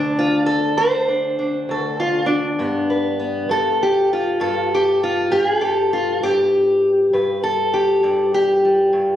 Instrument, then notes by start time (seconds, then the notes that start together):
steel-string acoustic guitar
Already playing: D2 D4 C5
0.19 F4
0.46 A4
0.77 D2 C5
1.08 D4
1.39 D4
1.69 D2 A4
1.86 A4
2.00 F4
2.26 D4
2.59 G2 B3
2.90 B4
3.19 B3
3.49 G2 A4
3.83 G4
4.13 F4
4.40 G2 A4
4.74 G4
5.03 F4
5.32 G2 G#4
5.61 G4 A4
5.93 F4
6.23 G2 G4
7.13 G2 B4
7.43 A4
7.74 G4
8.03 G2 G3
8.34 G4
8.65 G3
8.93 G2